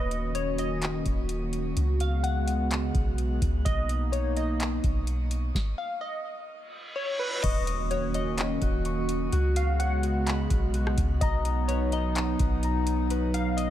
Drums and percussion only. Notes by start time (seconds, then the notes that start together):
0.11 closed hi-hat
0.35 closed hi-hat
0.58 closed hi-hat
0.82 clap, closed hi-hat
1.06 kick, closed hi-hat
1.29 closed hi-hat
1.53 closed hi-hat
1.77 closed hi-hat
2.00 closed hi-hat
2.24 closed hi-hat
2.48 closed hi-hat
2.71 clap, closed hi-hat
2.95 kick, closed hi-hat
3.18 closed hi-hat
3.42 kick, closed hi-hat
3.66 kick, closed hi-hat
3.89 closed hi-hat
4.13 closed hi-hat
4.37 closed hi-hat
4.60 clap, closed hi-hat
4.84 kick, closed hi-hat
5.07 closed hi-hat
5.31 closed hi-hat
5.55 kick, snare
7.44 kick, closed hi-hat, crash
7.67 closed hi-hat
7.91 closed hi-hat
8.14 closed hi-hat
8.38 clap, closed hi-hat
8.62 kick, closed hi-hat
8.85 closed hi-hat
9.09 closed hi-hat
9.32 closed hi-hat
9.56 closed hi-hat
9.80 closed hi-hat
10.03 closed hi-hat
10.27 clap, closed hi-hat
10.50 kick, closed hi-hat
10.74 closed hi-hat
10.87 cross-stick
10.98 kick, closed hi-hat
11.21 kick, closed hi-hat
11.45 closed hi-hat
11.69 closed hi-hat
11.92 closed hi-hat
12.16 clap, closed hi-hat
12.39 kick, closed hi-hat
12.63 closed hi-hat
12.87 closed hi-hat
13.10 closed hi-hat
13.34 closed hi-hat
13.58 closed hi-hat